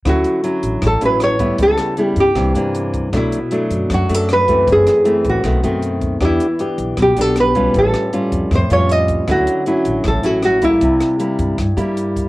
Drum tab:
HH |xxxxxxxx|xxxxxxxx|xxxxxxxx|xxxxxxxx|
SD |r---r-r-|-r--r---|r---r-r-|-r--r---|
BD |o---o--o|o--oo--o|o---o--o|o--oo--o|

HH |xxxxxxxx|xxxxxxxx|xxxxxxxx|xxxxxxxx|
SD |r---r-r-|-r--r---|r---r-r-|-r--r---|
BD |o---o--o|o--oo--o|o---o--o|o--oo--o|